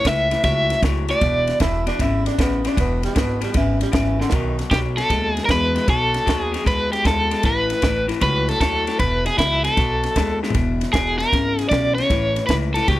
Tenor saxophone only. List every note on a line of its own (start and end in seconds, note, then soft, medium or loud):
1.61 1.86 E4 medium
1.88 2.03 D4 medium
2.02 2.26 E4 medium
2.27 2.39 D4 medium
2.41 2.70 B3 medium
2.68 2.79 D4 medium
2.80 3.04 B3 medium
3.05 3.20 G3 medium
3.18 3.42 B3 medium
3.43 3.55 G3 medium
3.57 3.81 E3 medium
3.82 3.94 G3 medium
3.93 4.22 E3 medium
4.21 4.35 D3 medium
4.33 4.58 D#3 medium